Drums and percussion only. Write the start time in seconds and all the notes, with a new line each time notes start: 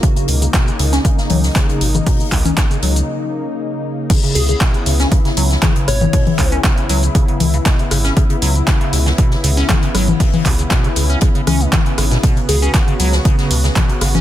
0.03 kick, closed hi-hat, shaker
0.16 closed hi-hat, shaker
0.28 closed hi-hat, open hi-hat
0.42 closed hi-hat, shaker
0.54 kick, snare, clap, closed hi-hat, shaker
0.68 shaker
0.79 closed hi-hat, open hi-hat
0.92 snare, closed hi-hat, shaker
1.05 kick, closed hi-hat, shaker
1.18 snare, shaker
1.29 closed hi-hat, open hi-hat, low conga
1.43 snare, shaker
1.56 kick, snare, clap, closed hi-hat, shaker
1.69 closed hi-hat, shaker
1.81 closed hi-hat, open hi-hat
1.95 closed hi-hat, low conga, shaker
2.06 kick, closed hi-hat, open hi-hat, shaker
2.20 closed hi-hat, shaker
2.32 kick, clap, open hi-hat
2.46 closed hi-hat, low conga, shaker
2.57 kick, snare, clap, closed hi-hat, shaker
2.71 closed hi-hat, shaker
2.82 closed hi-hat, open hi-hat
2.96 closed hi-hat, shaker
4.10 kick, closed hi-hat, crash, shaker
4.23 closed hi-hat
4.35 closed hi-hat, open hi-hat, shaker
4.49 closed hi-hat, shaker
4.61 kick, snare, clap, closed hi-hat, shaker
4.74 closed hi-hat
4.86 closed hi-hat, open hi-hat, shaker
4.99 snare, closed hi-hat, shaker
5.11 kick, closed hi-hat, shaker
5.25 snare, closed hi-hat
5.37 closed hi-hat, open hi-hat, shaker
5.51 snare, closed hi-hat, shaker
5.62 kick, snare, clap, closed hi-hat, low conga, shaker
5.76 closed hi-hat
5.88 cross-stick, closed hi-hat, open hi-hat, shaker
6.01 closed hi-hat, low conga, shaker
6.13 kick, closed hi-hat, open hi-hat, shaker
6.27 closed hi-hat, low conga
6.38 kick, clap, closed hi-hat, open hi-hat, shaker
6.52 closed hi-hat, shaker
6.64 kick, snare, clap, closed hi-hat, shaker
6.78 closed hi-hat
6.89 closed hi-hat, open hi-hat, shaker
7.03 closed hi-hat, shaker
7.15 kick, closed hi-hat, shaker
7.28 closed hi-hat
7.40 closed hi-hat, open hi-hat, low conga, shaker
7.54 closed hi-hat, shaker
7.66 kick, snare, clap, closed hi-hat, shaker
7.79 closed hi-hat
7.91 cross-stick, closed hi-hat, open hi-hat, shaker
8.04 snare, shaker
8.17 kick, closed hi-hat, shaker
8.30 closed hi-hat
8.42 closed hi-hat, open hi-hat, shaker
8.55 closed hi-hat, shaker
8.67 kick, snare, clap, closed hi-hat, shaker
8.81 closed hi-hat
8.93 closed hi-hat, open hi-hat, shaker
9.06 snare, closed hi-hat, shaker
9.18 kick, closed hi-hat, shaker
9.31 snare, closed hi-hat
9.44 closed hi-hat, open hi-hat, shaker
9.57 snare, closed hi-hat, shaker
9.69 kick, snare, clap, closed hi-hat, low conga, shaker
9.82 closed hi-hat
9.95 cross-stick, closed hi-hat, open hi-hat, shaker
10.08 closed hi-hat, low conga, shaker
10.20 kick, closed hi-hat, open hi-hat, shaker
10.34 closed hi-hat, low conga
10.45 kick, clap, closed hi-hat, open hi-hat, shaker
10.59 closed hi-hat, shaker
10.70 kick, snare, clap, closed hi-hat, shaker
10.84 closed hi-hat
10.96 closed hi-hat, open hi-hat, shaker
11.10 closed hi-hat, shaker
11.21 kick, closed hi-hat, shaker
11.35 closed hi-hat
11.47 cross-stick, closed hi-hat, open hi-hat, low conga, shaker
11.61 closed hi-hat, shaker
11.72 kick, snare, clap, closed hi-hat, low conga, shaker
11.86 closed hi-hat
11.98 cross-stick, closed hi-hat, open hi-hat, shaker
12.12 snare, closed hi-hat, shaker
12.23 kick, closed hi-hat, ride, shaker
12.37 closed hi-hat
12.48 closed hi-hat, open hi-hat, ride, shaker
12.63 closed hi-hat, shaker
12.74 kick, snare, clap, closed hi-hat, ride, shaker
12.88 closed hi-hat
12.99 closed hi-hat, open hi-hat, ride, shaker
13.12 snare, closed hi-hat, shaker
13.25 kick, closed hi-hat, ride, shaker
13.38 snare, closed hi-hat
13.51 closed hi-hat, open hi-hat, ride, shaker
13.64 snare, closed hi-hat, shaker
13.76 kick, snare, clap, closed hi-hat, ride, low conga, shaker
13.89 closed hi-hat
14.01 cross-stick, closed hi-hat, open hi-hat, ride, shaker
14.15 closed hi-hat, low conga, shaker